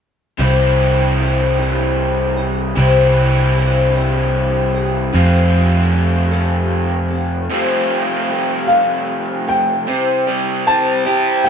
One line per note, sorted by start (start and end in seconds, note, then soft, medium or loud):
0.38 2.72 C2 medium
0.38 1.18 C3 medium
0.38 1.19 E3 medium
0.38 1.18 G3 medium
0.38 1.19 C4 medium
0.38 1.19 E4 medium
0.38 1.21 C5 medium
1.18 1.58 G3 soft
1.18 1.58 C4 medium
1.18 1.57 E4 medium
1.18 1.57 C5 medium
1.58 2.38 C3 soft
1.58 2.38 E3 medium
1.58 2.39 G3 medium
1.58 2.38 C4 medium
1.58 2.37 E4 medium
1.58 2.36 C5 medium
2.37 2.76 G3 soft
2.37 2.77 C4 soft
2.37 2.77 E4 soft
2.37 2.76 C5 soft
2.77 5.10 C2 medium
2.77 3.56 C3 medium
2.77 3.56 E3 medium
2.77 3.55 G3 medium
2.77 3.56 C4 medium
2.77 3.57 E4 medium
2.77 3.58 C5 medium
3.56 3.95 G3 soft
3.56 3.95 C4 medium
3.56 3.95 E4 medium
3.56 3.94 C5 medium
3.96 4.75 C3 soft
3.96 4.75 E3 medium
3.96 4.77 G3 medium
3.96 4.76 C4 medium
3.96 4.74 E4 medium
3.96 4.74 C5 medium
4.74 5.12 G3 soft
4.74 5.13 C4 soft
4.74 5.14 E4 soft
4.74 5.14 C5 soft
5.13 7.48 F2 medium
5.13 7.47 F2 medium
5.13 7.48 C3 medium
5.13 5.92 F3 medium
5.13 5.92 G3 medium
5.13 7.49 A3 medium
5.13 5.93 C4 medium
5.13 7.49 F4 medium
5.13 5.94 G4 medium
5.13 5.93 A4 medium
5.92 6.32 G3 medium
5.92 6.31 C4 medium
5.92 6.30 G4 medium
5.92 6.30 A4 medium
6.31 7.12 F3 medium
6.31 7.13 G3 medium
6.31 7.13 C4 medium
6.31 7.11 G4 medium
6.31 7.09 A4 medium
7.10 7.50 C4 soft
7.10 7.51 G4 soft
7.10 7.50 A4 soft
7.50 9.85 F2 medium
7.50 9.85 C3 medium
7.50 8.29 F3 medium
7.50 8.28 G3 medium
7.50 9.86 A3 medium
7.50 8.28 C4 medium
7.50 9.86 F4 medium
7.50 8.29 G4 medium
7.50 8.30 A4 medium
8.29 8.69 G3 medium
8.29 8.69 C4 medium
8.29 8.68 G4 medium
8.29 8.67 A4 medium
8.67 9.49 F3 medium
8.67 9.49 G3 soft
8.67 9.48 C4 medium
8.67 9.48 G4 medium
8.67 9.46 A4 medium
8.67 9.50 F5 medium
9.47 9.88 C4 soft
9.47 9.88 G4 soft
9.47 9.87 A4 soft
9.47 10.70 G5 medium
9.87 10.27 C3 medium
9.87 10.27 E3 medium
9.87 10.27 G3 medium
9.87 10.27 C4 medium
9.87 10.26 E4 medium
9.87 10.25 C5 medium
10.26 10.64 G3 soft
10.26 10.65 C4 soft
10.26 10.66 E4 soft
10.26 10.66 C5 soft
10.65 11.05 G3 medium
10.65 11.04 C4 medium
10.65 11.04 E4 medium
10.65 11.03 C5 medium
10.65 11.48 A5 medium
11.04 11.46 C3 soft
11.04 11.46 E3 soft
11.04 11.43 G3 medium
11.04 11.44 C4 medium
11.04 11.45 E4 medium
11.04 11.49 G4 medium
11.04 11.45 C5 medium
11.44 11.49 G3 medium
11.44 11.49 C4 soft
11.44 11.49 G5 medium